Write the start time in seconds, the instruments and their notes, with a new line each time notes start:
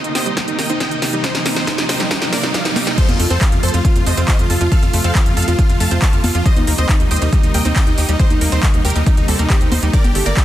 Already playing: riser
0.04 digital synth lead D#4, supersaw synth D#4, closed hi-hat
0.15 analog synth pad C3 A#3 D#4 G4, synth pluck G4, supersaw synth C5 D#5, digital synth lead D#5, snare, open hi-hat
0.26 synth pluck G3, digital synth lead D#4, supersaw synth D#4, closed hi-hat
0.37 analog synth pad C3 A#3 D#4 G4, synth pluck G3, digital synth lead D#4, supersaw synth D#4, kick, snare, closed hi-hat
0.48 digital synth lead D#4, supersaw synth D#4, closed hi-hat
0.58 analog synth pad C3 A#3 D#4 G4, synth pluck A#3, supersaw synth D#5 G5, digital synth lead G5, snare, open hi-hat
0.69 synth pluck C4, supersaw synth D#4, digital synth lead D#4, closed hi-hat
0.80 analog synth pad C3 A#3 D#4 G4, synth pluck D#4, supersaw synth D#5 G5, digital synth lead G5, kick, snare, closed hi-hat
0.91 supersaw synth D#4, digital synth lead D#4, closed hi-hat
1.02 analog synth pad C3 A#3 D#4 G4, supersaw synth D#4, digital synth lead D#4, synth pluck G4, snare, open hi-hat
1.13 synth pluck G3, digital synth lead D#4, supersaw synth D#4, closed hi-hat
1.24 analog synth pad C3 A#3 D#4 G4, synth pluck G3, supersaw synth D#4 C5, digital synth lead C5, kick, snare, closed hi-hat
1.35 digital synth lead D#4, supersaw synth D#4, snare, closed hi-hat
1.45 analog synth pad C3 A#3 D#4 G4, synth pluck A#3, digital synth lead D#4, supersaw synth D#4, snare, open hi-hat
1.56 synth pluck C4, supersaw synth D#4 C5, digital synth lead C5, snare, closed hi-hat
1.67 analog synth pad C3 A#3 D#4 G4, synth pluck D#4, digital synth lead D#4, supersaw synth D#4, kick, snare, closed hi-hat
1.78 digital synth lead D#4, supersaw synth D#4, snare, closed hi-hat
1.89 analog synth pad C3 A#3 D#4 G4, supersaw synth D#4 C5, synth pluck G4, digital synth lead C5, snare, open hi-hat
2.00 synth pluck G3, supersaw synth D#4, digital synth lead D#4, snare, closed hi-hat
2.11 analog synth pad C3 A#3 D#4 G4, synth pluck G3, supersaw synth D#4, digital synth lead D#4, kick, snare, closed hi-hat
2.22 supersaw synth D#4, digital synth lead D#4, snare, closed hi-hat
2.32 analog synth pad C3 A#3 D#4 G4, synth pluck A#3, supersaw synth A#4 D5, digital synth lead D5, snare, open hi-hat
2.43 synth pluck C4, digital synth lead D#4, supersaw synth D#4, snare, closed hi-hat
2.54 analog synth pad C3 A#3 D#4 G4, synth pluck D#4, supersaw synth D5 F5, digital synth lead F5, kick, snare, closed hi-hat
2.65 digital synth lead D#4, supersaw synth D#4, snare, closed hi-hat
2.76 analog synth pad C3 A#3 D#4 G4, supersaw synth D#4, digital synth lead D#4, synth pluck G4, snare, open hi-hat, high conga
2.87 synth pluck G3, digital synth lead D#4, supersaw synth D#4, snare, closed hi-hat
2.98 analog synth pad C3 F3 A3 F4, synth pluck F3, supersaw synth A4 C5, digital synth lead C5, kick, closed hi-hat, crash
3.09 analog synth bass F2, digital synth lead F4, supersaw synth F4, closed hi-hat, high conga
3.19 analog synth bass F2, analog synth pad C3 F3 A3 F4, synth pluck A3, digital synth lead F4, supersaw synth F4, open hi-hat
3.30 analog synth bass F2, synth pluck C4, supersaw synth A4 C5, digital synth lead C5, closed hi-hat
3.41 analog synth pad C3 F3 A3 F4, digital synth lead F4, synth pluck F4, supersaw synth F4, kick, clap, closed hi-hat
3.52 analog synth bass F2, digital synth lead F4, supersaw synth F4, closed hi-hat
3.63 analog synth bass F2, analog synth pad C3 F3 A3 F4, synth pluck A4, supersaw synth A4 C5, digital synth lead C5, open hi-hat
3.68 closed hi-hat
3.74 analog synth bass F2, synth pluck F3, digital synth lead F4, supersaw synth F4, closed hi-hat
3.85 analog synth pad C3 F3 A3 F4, synth pluck F3, supersaw synth F4, digital synth lead F4, kick, closed hi-hat
3.96 analog synth bass F2, digital synth lead F4, supersaw synth F4, closed hi-hat
4.06 analog synth bass F2, analog synth pad C3 F3 A3 F4, synth pluck A3, supersaw synth C5 D#5, digital synth lead D#5, open hi-hat
4.17 analog synth bass F2, synth pluck C4, digital synth lead F4, supersaw synth F4, closed hi-hat
4.28 analog synth pad C3 F3 A3 F4, synth pluck F4, supersaw synth C5 D#5, digital synth lead D#5, kick, clap, closed hi-hat
4.39 analog synth bass F2, digital synth lead F4, supersaw synth F4, closed hi-hat
4.50 analog synth bass F2, analog synth pad C3 F3 A3 F4, digital synth lead F4, supersaw synth F4, synth pluck A4, open hi-hat
4.61 analog synth bass F2, synth pluck F3, digital synth lead F4, supersaw synth F4, closed hi-hat
4.72 analog synth pad C3 F3 A3 F4, synth pluck F3, supersaw synth A4 F5, digital synth lead F5, kick, closed hi-hat
4.83 analog synth bass F2, digital synth lead F4, supersaw synth F4, closed hi-hat
4.93 analog synth bass F2, analog synth pad C3 F3 A3 F4, synth pluck A3, digital synth lead F4, supersaw synth F4, open hi-hat
5.04 analog synth bass F2, synth pluck C4, supersaw synth A4 F5, digital synth lead F5, closed hi-hat
5.15 analog synth pad C3 F3 A3 F4, digital synth lead F4, synth pluck F4, kick, clap, closed hi-hat
5.26 analog synth bass F2, digital synth lead F4, supersaw synth F4, closed hi-hat
5.37 analog synth bass F2, analog synth pad C3 F3 A3 F4, synth pluck A4, supersaw synth A4 F5, digital synth lead F5, open hi-hat
5.42 closed hi-hat
5.48 analog synth bass F2, synth pluck F3, digital synth lead F4, supersaw synth F4, closed hi-hat
5.59 analog synth pad C3 F3 A3 F4, synth pluck F3, digital synth lead F4, supersaw synth F4, kick, closed hi-hat
5.69 analog synth bass F2, digital synth lead F4, supersaw synth F4, closed hi-hat
5.80 analog synth bass F2, analog synth pad C3 F3 A3 F4, synth pluck A3, supersaw synth F5 A5, digital synth lead A5, open hi-hat
5.91 analog synth bass F2, synth pluck C4, digital synth lead F4, supersaw synth F4, closed hi-hat
6.02 analog synth pad C3 F3 A3 F4, synth pluck F4, supersaw synth F5 A5, digital synth lead A5, kick, clap, closed hi-hat
6.13 analog synth bass F2, digital synth lead F4, supersaw synth F4, closed hi-hat
6.24 analog synth bass F2, analog synth pad C3 F3 A3 F4, digital synth lead F4, supersaw synth F4, synth pluck A4, open hi-hat, high conga
6.35 analog synth bass F2, synth pluck F3, digital synth lead F4, supersaw synth F4, closed hi-hat
6.46 analog synth pad C3 G3 A#3 D#4, synth pluck G3, supersaw synth C5 D#5, digital synth lead D#5, kick, closed hi-hat
6.56 analog synth bass D#2, digital synth lead D#4, supersaw synth D#4, closed hi-hat, high conga
6.67 analog synth bass D#2, analog synth pad C3 G3 A#3 D#4, synth pluck A#3, digital synth lead D#4, supersaw synth D#4, open hi-hat
6.78 analog synth bass D#2, synth pluck C4, supersaw synth C5 D#5, digital synth lead D#5, closed hi-hat
6.89 analog synth pad C3 G3 A#3 D#4, digital synth lead D#4, synth pluck D#4, supersaw synth D#4, kick, clap, closed hi-hat
7.00 analog synth bass D#2, digital synth lead D#4, supersaw synth D#4, closed hi-hat
7.11 analog synth bass D#2, analog synth pad C3 G3 A#3 D#4, synth pluck G4, supersaw synth C5 D#5, digital synth lead D#5, open hi-hat
7.16 closed hi-hat
7.22 analog synth bass D#2, synth pluck G3, digital synth lead D#4, supersaw synth D#4, closed hi-hat
7.33 analog synth pad C3 G3 A#3 D#4, synth pluck G3, supersaw synth D#4, kick, closed hi-hat
7.43 analog synth bass D#2, digital synth lead D#4, supersaw synth D#4, closed hi-hat
7.54 analog synth bass D#2, analog synth pad C3 G3 A#3 D#4, synth pluck A#3, supersaw synth D#5 G5, digital synth lead G5, open hi-hat
7.65 analog synth bass D#2, synth pluck C4, digital synth lead D#4, supersaw synth D#4, closed hi-hat
7.76 analog synth pad C3 G3 A#3 D#4, synth pluck D#4, supersaw synth D#5 G5, digital synth lead G5, kick, clap, closed hi-hat
7.87 analog synth bass D#2, digital synth lead D#4, supersaw synth D#4, closed hi-hat
7.98 analog synth bass D#2, analog synth pad C3 G3 A#3 D#4, supersaw synth D#4, digital synth lead D#4, synth pluck G4, open hi-hat
8.09 analog synth bass D#2, synth pluck G3, digital synth lead D#4, supersaw synth D#4, closed hi-hat
8.19 analog synth pad C3 G3 A#3 D#4, synth pluck G3, supersaw synth D#4 C5, digital synth lead C5, kick, closed hi-hat
8.30 analog synth bass D#2, digital synth lead D#4, supersaw synth D#4, closed hi-hat
8.41 analog synth bass D#2, analog synth pad C3 G3 A#3 D#4, synth pluck A#3, supersaw synth D#4, digital synth lead D#4, open hi-hat
8.52 analog synth bass D#2, synth pluck C4, supersaw synth D#4 C5, digital synth lead C5, closed hi-hat
8.63 analog synth pad C3 G3 A#3 D#4, supersaw synth D#4, synth pluck D#4, digital synth lead D#4, kick, clap, closed hi-hat
8.74 analog synth bass D#2, supersaw synth D#4, digital synth lead D#4, closed hi-hat
8.85 analog synth bass D#2, analog synth pad C3 G3 A#3 D#4, supersaw synth G4 A#4, synth pluck G4, digital synth lead A#4, open hi-hat
8.90 closed hi-hat
8.96 analog synth bass D#2, synth pluck G3, supersaw synth D#4, digital synth lead D#4, closed hi-hat
9.06 analog synth pad C3 G3 A#3 D#4, synth pluck G3, supersaw synth D#4, digital synth lead D#4, kick, closed hi-hat
9.17 analog synth bass D#2, supersaw synth D#4, digital synth lead D#4, closed hi-hat
9.28 analog synth bass D#2, analog synth pad C3 G3 A#3 D#4, synth pluck G3, supersaw synth C4 A4, digital synth lead A4, open hi-hat
9.39 analog synth bass D#2, synth pluck A#3, supersaw synth D#4, digital synth lead D#4, closed hi-hat
9.50 analog synth pad C3 G3 A#3 D#4, synth pluck C4, supersaw synth D#4 G4, digital synth lead G4, kick, clap, closed hi-hat
9.61 analog synth bass D#2, supersaw synth D#4, digital synth lead D#4, closed hi-hat
9.72 analog synth bass D#2, analog synth pad C3 G3 A#3 D#4, supersaw synth D#4, digital synth lead D#4, synth pluck C5, open hi-hat, high conga
9.82 analog synth bass D#2, synth pluck G3, digital synth lead D#4, supersaw synth D#4, closed hi-hat
9.93 analog synth pad D3 A3 A#3 G4, synth pluck G3, supersaw synth A#4 D5, digital synth lead D5, kick, closed hi-hat
10.04 analog synth bass G1, digital synth lead G4, supersaw synth G4, closed hi-hat, high conga
10.15 analog synth bass G1, analog synth pad D3 A3 A#3 G4, synth pluck A3, supersaw synth G4, digital synth lead G4, open hi-hat
10.26 analog synth bass G1, synth pluck A#3, supersaw synth A#4 D5, digital synth lead D5, closed hi-hat
10.37 analog synth pad D3 A3 A#3 G4, synth pluck D4, supersaw synth G4, digital synth lead G4, kick, clap, closed hi-hat